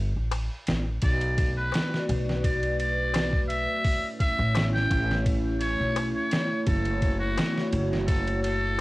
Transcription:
Already playing: upright bass G1
0.16 upright bass A1
0.31 ride, darbuka tek
0.67 upright bass A1, snare, ride
1.02 upright bass B1, analog synth pad A3 F#4 B4 D5, muted trumpet D5, kick, ride
1.21 ride
1.38 kick, ride
1.57 muted trumpet B4
1.72 snare, ride, darbuka tek
1.94 snare
2.09 upright bass B1, ride
2.29 snare
2.44 muted trumpet D5, kick, ride
2.63 ride
2.79 muted trumpet D5, ride
3.14 snare, ride, darbuka tek
3.33 kick
3.49 muted trumpet E5, ride
3.84 analog synth pad C#4 E4 C#5, kick, open hi-hat
4.20 muted trumpet E5, kick, ride
4.39 upright bass A1
4.55 snare, ride, darbuka tek
4.74 muted trumpet G5, snare
4.91 upright bass A1, kick, ride
5.11 snare
5.26 kick, ride
5.61 muted trumpet C#5, ride
5.80 upright bass B1
5.96 ride, darbuka tek
6.15 muted trumpet C#5
6.31 snare, ride
6.66 upright bass F#1, analog synth pad F#4, muted trumpet A4, kick, ride
6.85 ride
7.02 kick, ride
7.19 muted trumpet F#4
7.38 snare, ride, darbuka tek
7.58 snare
7.73 upright bass F#1, ride
7.93 snare
8.07 muted trumpet A4, kick, ride
8.28 ride
8.43 muted trumpet A4, ride

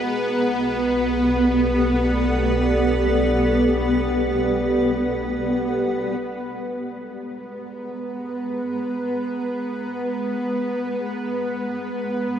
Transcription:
Already playing: synth drone B3 B4, ambient pad F#5
0.03 synth drone B1, ambient pad B3
0.42 ambient pad G4
0.69 ambient pad A4 D5
6.18 ambient pad G#3, synth drone B3 B4
6.45 ambient pad A#5
6.50 ambient pad G#4
6.63 ambient pad B4
12.36 ambient pad F#4

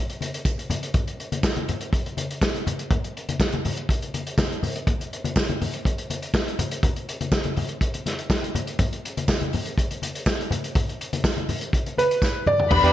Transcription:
0.10 closed hi-hat
0.21 closed hi-hat, high conga
0.34 closed hi-hat
0.45 kick, closed hi-hat, tambourine, muted conga
0.58 closed hi-hat, muted conga
0.70 closed hi-hat, high conga, low conga
0.83 closed hi-hat
0.94 kick, closed hi-hat, muted conga, low conga
1.07 closed hi-hat, muted conga
1.20 closed hi-hat
1.32 closed hi-hat, high conga
1.43 kick, snare, tambourine
1.56 closed hi-hat, high conga
1.69 closed hi-hat, high conga, low conga
1.81 closed hi-hat
1.93 kick, closed hi-hat, muted conga
2.06 closed hi-hat, muted conga
2.17 closed hi-hat, high conga
2.31 closed hi-hat
2.41 kick, snare, tambourine, muted conga
2.55 closed hi-hat, muted conga
2.67 closed hi-hat, high conga, low conga
2.79 closed hi-hat
2.91 kick, closed hi-hat, muted conga, low conga
3.04 closed hi-hat, muted conga
3.17 closed hi-hat
3.29 closed hi-hat, high conga
3.40 kick, snare, tambourine, muted conga
3.52 closed hi-hat, muted conga, high conga
3.65 open hi-hat, high conga, low conga
3.77 closed hi-hat
3.89 kick, closed hi-hat, muted conga
4.02 closed hi-hat, muted conga
4.14 closed hi-hat, high conga
4.27 closed hi-hat
4.38 kick, snare, tambourine, muted conga, high conga
4.51 closed hi-hat, muted conga
4.63 open hi-hat, high conga, low conga
4.76 closed hi-hat
4.87 kick, closed hi-hat, low conga
5.00 closed hi-hat, muted conga
5.13 closed hi-hat
5.24 closed hi-hat, high conga
5.36 kick, snare, tambourine, muted conga
5.48 closed hi-hat, muted conga, high conga
5.61 open hi-hat, high conga, low conga
5.74 closed hi-hat
5.85 kick, closed hi-hat, muted conga
5.98 closed hi-hat
6.10 closed hi-hat, high conga
6.22 closed hi-hat
6.34 kick, snare, tambourine, muted conga
6.47 closed hi-hat, muted conga
6.59 closed hi-hat, high conga, low conga
6.71 closed hi-hat
6.83 kick, closed hi-hat, muted conga, low conga
6.96 closed hi-hat, muted conga
7.09 closed hi-hat
7.21 closed hi-hat, high conga
7.32 kick, snare, tambourine
7.44 closed hi-hat, high conga
7.56 open hi-hat, high conga, low conga
7.69 closed hi-hat
7.81 kick, closed hi-hat
7.94 closed hi-hat, muted conga
8.06 snare, closed hi-hat, high conga
8.19 closed hi-hat
8.30 kick, snare, tambourine
8.43 closed hi-hat, muted conga
8.55 closed hi-hat, high conga, low conga
8.67 closed hi-hat
8.79 kick, closed hi-hat, muted conga, low conga
8.93 closed hi-hat, muted conga
9.05 closed hi-hat
9.17 closed hi-hat, high conga
9.28 kick, snare, tambourine, muted conga
9.40 closed hi-hat, muted conga, high conga
9.53 open hi-hat, high conga, low conga
9.66 closed hi-hat
9.78 kick, closed hi-hat, muted conga
9.91 closed hi-hat, muted conga
10.02 closed hi-hat, high conga
10.15 closed hi-hat
10.26 kick, snare, tambourine
10.39 closed hi-hat, muted conga
10.51 closed hi-hat, high conga, low conga
10.64 closed hi-hat
10.75 kick, closed hi-hat, muted conga, low conga
10.88 closed hi-hat, muted conga
11.01 closed hi-hat
11.13 closed hi-hat, high conga
11.24 kick, snare, tambourine
11.36 closed hi-hat, high conga
11.49 open hi-hat, high conga, low conga
11.61 closed hi-hat
11.73 kick, closed hi-hat
11.86 closed hi-hat, muted conga
11.98 grand piano B4, closed hi-hat, high conga
12.11 closed hi-hat
12.22 kick, snare, tambourine
12.46 grand piano D5, mid tom, high conga, low conga
12.60 floor tom
12.70 fingered electric bass E2, tonewheel organ E3 B3 D4 G4, string section B4 B5, muted clean electric guitar stroke, kick, crash, low conga
12.83 fingered electric bass E2, clean electric guitar D4 G4 B4, closed hi-hat, muted conga

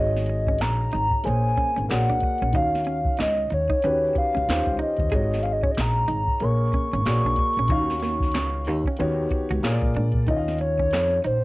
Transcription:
Already playing: upright bass G#1, upright piano G#3 D#4 F#4, soft synth lead D#5
0.00 upright piano C#5
0.16 snare
0.26 muted clean electric guitar stroke, closed hi-hat
0.47 clean electric guitar C#4, kick
0.58 upright bass A#1, soft synth lead A#5, snare, closed hi-hat
0.63 clap
0.92 upright bass G#1, clean electric guitar D#4, closed hi-hat
1.11 kick
1.24 upright bass A#1, upright piano A#3 G#4 C5 C#5, soft synth lead G#5, muted clean electric guitar stroke, closed hi-hat
1.57 clean electric guitar C#4, kick, closed hi-hat
1.76 upright bass G#1, clean electric guitar C#4
1.89 upright bass A#1, upright piano A#3 F#4 G#4 C#5 D5, soft synth lead F#5, snare, clap, closed hi-hat
2.10 upright bass C#2, clean electric guitar D4
2.20 muted clean electric guitar stroke, kick, closed hi-hat
2.38 upright bass A#1, closed hi-hat
2.42 clean electric guitar C#4
2.52 upright bass D#2, upright piano D#3 C#4 F#4 F5, clean electric guitar D#4, kick, closed hi-hat
2.57 soft synth lead F5
2.75 snare
2.85 clean electric guitar C#4, closed hi-hat
3.05 kick
3.17 upright bass C#2, clean electric guitar D#4, snare, closed hi-hat
3.21 soft synth lead D#5, clap
3.50 upright bass D#2, soft synth lead C#5, muted clean electric guitar stroke, closed hi-hat
3.69 clean electric guitar D#4, kick
3.82 upright bass D#2, upright piano D#3 C#4 F#4 G4 B4, clean electric guitar C#4, closed hi-hat
4.15 soft synth lead F5, muted clean electric guitar stroke, kick, closed hi-hat
4.35 upright bass C#2, clean electric guitar C#4
4.48 upright bass D#2, upright piano D#3 C#4 F4 G4 C5, snare, clap, closed hi-hat
4.67 upright bass C#2, kick
4.79 clean electric guitar D#4, soft synth lead D#5, closed hi-hat
4.97 upright bass D#2, kick, closed hi-hat
5.11 upright bass G#1, upright piano G#3 D#4 F#4 C#5, clean electric guitar G#4, kick, closed hi-hat
5.34 snare
5.43 soft synth lead F5, muted clean electric guitar stroke, closed hi-hat
5.53 soft synth lead D#5
5.63 clean electric guitar C#4, soft synth lead C#5, kick
5.71 soft synth lead D#5, closed hi-hat
5.77 upright bass A#1, soft synth lead A#5, snare, clap
6.08 upright bass G#1, clean electric guitar D#4, closed hi-hat
6.27 kick
6.40 upright bass A#1, upright piano A#3 G#4 A#4 C#5, soft synth lead C#6, muted clean electric guitar stroke, closed hi-hat
6.73 clean electric guitar C#4, kick, closed hi-hat
6.93 upright bass G#1, clean electric guitar C#4
7.06 upright bass A#1, upright piano A#3 F#4 G#4 C#5 D5, snare, clap, closed hi-hat
7.25 upright bass B1, clean electric guitar D4
7.36 muted clean electric guitar stroke, kick, closed hi-hat
7.53 upright bass A#1, closed hi-hat
7.59 clean electric guitar C#4
7.68 upright bass D#2, upright piano D#3 C#4 F4 F5, clean electric guitar D#4, kick, closed hi-hat
7.77 upright piano F#4
7.90 snare
8.00 clean electric guitar A#3, snare, closed hi-hat
8.20 kick, snare
8.32 upright bass C#2, snare, closed hi-hat
8.36 clean electric guitar C#4, clap
8.65 upright bass D#2, muted clean electric guitar stroke, open hi-hat
8.84 clean electric guitar C#4, kick
8.97 upright bass D#2, upright piano D#3 B3 F#4 G4, clean electric guitar C#4, closed hi-hat
9.01 upright piano C#5
9.31 muted clean electric guitar stroke, kick, closed hi-hat
9.51 upright bass C#2, clean electric guitar F#4
9.63 upright bass A#1, upright piano A#3 F4 G#4 C#5, snare, clap, closed hi-hat
9.71 upright piano D5
9.79 upright bass A#1, kick, closed hi-hat
9.94 upright bass A#2, clean electric guitar D4, closed hi-hat
10.12 kick, closed hi-hat
10.26 upright bass D#2, upright piano D#3 C#4 F4, clean electric guitar D#4, soft synth lead D#5, kick, closed hi-hat
10.30 upright piano D#5
10.37 upright piano F5
10.48 snare
10.58 soft synth lead C#5, muted clean electric guitar stroke, closed hi-hat
10.79 clean electric guitar C#4, kick
10.91 upright bass F2, snare, closed hi-hat
10.95 clap
11.24 upright bass A#1, clean electric guitar D#4, soft synth lead C5, closed hi-hat

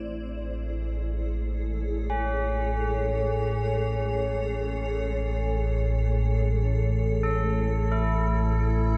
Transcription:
Already playing: synth drone A1 A2, singing bowl A3, ambient pad E4 G#4
0.07 ambient pad A4
1.13 ambient pad C#5
2.10 tubular bells C#4
6.94 ambient pad E4
7.23 tubular bells A4
7.92 tubular bells E4
8.50 ambient pad C5

